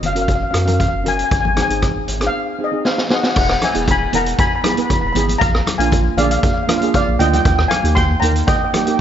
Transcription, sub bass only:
0.02 0.44 F#1 medium
0.54 0.86 F#2 medium
0.93 1.24 F#1 medium
1.31 1.63 G#1 loud
1.70 2.01 G#1 medium
2.08 2.29 G#1 medium
3.36 3.57 E1 loud
3.75 4.06 E1 medium
4.13 4.34 E1 loud
5.02 5.13 E1 medium
5.15 5.36 G#1 loud
5.41 5.62 A#1 loud
5.78 6.10 A#1 loud
6.17 6.38 A#1 loud
7.07 7.18 A#1 medium
7.19 7.40 D2 loud
7.45 7.66 D#2 loud
7.84 8.15 D#2 loud
8.22 8.43 D#2 medium

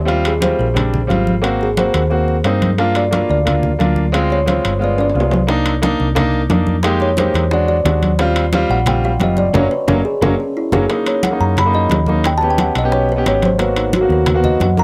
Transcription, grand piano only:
0.05 0.30 G3 medium
0.05 0.31 C4 medium
0.05 0.31 F4 loud
0.40 0.65 G3 medium
0.40 0.65 C4 medium
0.40 0.66 F4 medium
0.74 0.98 G3 medium
0.74 0.99 C4 medium
0.74 1.00 D4 medium
1.07 1.32 G3 medium
1.07 1.33 C4 medium
1.07 1.33 F4 medium
1.42 1.66 A#3 medium
1.42 1.67 C4 medium
1.42 1.67 F#4 medium
1.77 2.01 A#3 medium
1.77 2.01 C4 medium
1.77 2.01 F#4 medium
2.10 2.34 A#3 medium
2.10 2.34 C4 medium
2.10 2.35 F#4 medium
2.44 2.68 A#3 medium
2.44 2.69 C4 medium
2.44 2.69 D#4 medium
2.78 3.02 A#3 loud
2.78 3.02 D4 medium
2.78 3.03 F4 loud
3.11 3.35 A#3 medium
3.11 3.36 D4 medium
3.11 3.36 F4 medium
3.45 3.69 A#3 medium
3.45 3.70 D4 medium
3.45 3.70 F4 medium
3.79 4.03 A#3 medium
3.79 4.03 D4 medium
3.79 4.04 F4 medium
4.12 4.37 G#3 loud
4.12 4.37 C4 medium
4.12 4.38 F4 loud
4.46 4.70 G#3 medium
4.46 4.71 C4 medium
4.46 4.71 F4 medium
4.79 5.04 G#3 medium
4.79 5.04 B3 medium
4.79 5.05 F4 medium
5.14 5.38 G#3 medium
5.14 5.39 B3 medium
5.14 5.39 F4 medium
5.47 5.72 A#3 medium
5.47 5.72 D4 medium
5.47 5.73 D#4 loud
5.82 6.06 A#3 medium
5.82 6.07 D4 medium
5.82 6.07 D#4 loud
6.15 6.40 A#3 loud
6.15 6.40 D4 medium
6.15 6.41 D#4 loud
6.50 6.74 A#3 medium
6.50 6.74 D4 medium
6.50 6.75 D#4 medium
6.83 7.08 G#3 loud
6.83 7.08 A#3 medium
6.83 7.08 D#4 medium
6.83 7.08 G4 loud
7.18 7.42 G#3 medium
7.18 7.42 A#3 medium
7.18 7.42 D#4 medium
7.18 7.43 G4 medium
7.51 7.75 G#3 medium
7.51 7.76 D4 medium
7.51 7.76 F#4 medium
7.85 8.09 G#3 medium
7.85 8.09 D4 medium
7.85 8.10 F#4 medium
8.19 8.43 G3 medium
8.19 8.43 C4 medium
8.19 8.44 F4 loud
8.53 8.77 G3 loud
8.53 8.77 C4 medium
8.53 8.78 F4 loud
8.86 9.10 G3 medium
8.86 9.11 C4 medium
8.86 9.11 F4 medium
9.19 9.44 G3 medium
9.19 9.44 C4 medium
9.19 9.45 F4 medium
9.54 9.65 F#3 loud
9.54 9.65 A#3 medium
9.54 9.65 C#4 loud
9.88 9.99 F#3 medium
9.88 9.99 A#3 loud
9.88 9.99 C#4 loud
10.22 10.33 F#3 medium
10.22 10.33 A#3 medium
10.22 10.33 C#4 medium
10.72 10.83 F#3 medium
10.72 10.84 A#3 medium
10.72 10.83 C#4 medium
10.89 11.19 A#3 medium
10.89 11.19 C#4 medium
10.89 11.20 D#4 medium
11.31 11.55 A#3 medium
11.31 11.55 C#4 medium
11.31 11.56 D#4 medium
11.66 11.95 A#3 medium
11.66 11.95 C#4 medium
11.66 11.96 D#4 medium
12.07 12.25 A#3 medium
12.07 12.25 C#4 medium
12.07 12.25 D#4 medium
12.41 12.71 B3 medium
12.41 12.71 C#4 medium
12.41 12.72 G4 medium
12.82 13.07 B3 medium
12.82 13.08 C#4 medium
12.82 13.08 G4 loud
13.16 13.46 B3 medium
13.16 13.47 C#4 medium
13.16 13.48 G4 loud
13.58 13.89 A#3 medium
13.58 13.89 B3 medium
13.58 13.90 F#4 medium
14.01 14.25 A#3 medium
14.01 14.25 B3 medium
14.01 14.26 F#4 medium
14.34 14.65 A#3 medium
14.34 14.65 B3 medium
14.34 14.65 F#4 medium
14.77 14.84 A#3 medium
14.77 14.84 B3 medium
14.77 14.84 F#4 medium

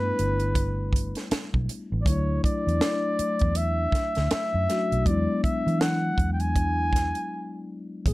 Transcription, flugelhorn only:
0.00 1.31 B4 loud
2.02 2.09 D5 medium
2.07 2.44 C#5 medium
2.44 3.58 D5 medium
3.57 4.31 E5 loud
4.32 5.08 E5 loud
5.07 5.43 D5 medium
5.43 5.82 E5 medium
5.81 6.32 F#5 loud
6.33 6.42 G5 medium
6.41 7.68 G#5 loud

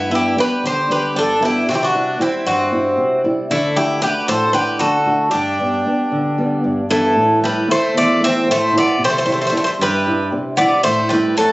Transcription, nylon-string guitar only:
0.00 0.35 G2 medium
0.09 0.35 G3 soft
0.09 0.36 B3 soft
0.09 0.35 D4 soft
0.36 0.78 G3 soft
0.36 0.79 B3 soft
0.36 0.79 D4 medium
0.63 1.14 D3 medium
0.88 1.31 G3 soft
0.88 1.31 B3 soft
0.88 1.31 D4 soft
1.15 1.66 G2 medium
1.40 1.62 G3 soft
1.40 1.62 B3 soft
1.40 1.62 D4 medium
1.68 2.18 C3 medium
1.94 2.17 G3 soft
1.94 2.18 C4 soft
1.94 2.18 E4 soft
2.18 2.61 G3 soft
2.18 2.61 C4 soft
2.18 2.61 E4 soft
2.45 2.96 G2 medium
2.71 3.14 G3 soft
2.71 3.14 C4 soft
2.71 3.14 E4 medium
2.97 3.48 C3 medium
3.24 3.45 G3 medium
3.24 3.46 C4 soft
3.24 3.46 E4 medium
3.50 4.01 D3 medium
3.75 4.01 A3 soft
3.75 4.01 D4 soft
3.75 4.01 F#4 medium
4.02 4.44 A3 soft
4.02 4.44 D4 soft
4.02 4.44 F#4 soft
4.29 4.79 A2 medium
4.52 4.95 A3 soft
4.52 4.96 D4 soft
4.52 4.96 F#4 soft
4.80 5.31 D3 medium
5.06 5.27 A3 soft
5.06 5.28 D4 soft
5.06 5.28 F#4 soft
5.33 5.84 G2 medium
5.59 5.84 G3 soft
5.59 5.84 B3 soft
5.59 5.85 D4 soft
5.85 6.27 G3 soft
5.85 6.27 B3 soft
5.85 6.28 D4 soft
6.12 6.63 D3 medium
6.38 6.80 G3 soft
6.38 6.80 B3 soft
6.38 6.80 D4 soft
6.64 7.15 G2 medium
6.89 7.11 G3 soft
6.89 7.11 B3 soft
6.89 7.11 D4 medium
7.15 7.67 A2 medium
7.42 7.66 A3 soft
7.42 7.66 C4 soft
7.42 7.67 E4 soft
7.67 8.10 A3 soft
7.67 8.10 C4 soft
7.67 8.10 E4 medium
7.94 8.46 E2 medium
8.20 8.63 A3 medium
8.20 8.63 C4 soft
8.20 8.63 E4 medium
8.47 8.98 A2 medium
8.72 8.94 A3 medium
8.72 8.94 C4 soft
8.72 8.94 E4 medium
8.99 9.50 C3 medium
9.25 9.50 G3 soft
9.25 9.51 C4 soft
9.25 9.51 E4 soft
9.52 9.94 G3 soft
9.52 9.94 C4 soft
9.52 9.94 E4 medium
9.79 10.30 G2 medium
10.06 10.48 G3 soft
10.06 10.48 C4 soft
10.06 10.48 E4 medium
10.32 10.83 C3 medium
10.58 10.79 G3 medium
10.58 10.79 C4 medium
10.58 10.79 E4 medium
10.85 11.35 A2 medium
11.11 11.36 A3 soft
11.11 11.37 C4 soft
11.11 11.36 E4 medium
11.37 11.52 A3 soft
11.37 11.52 C4 soft
11.37 11.52 E4 soft

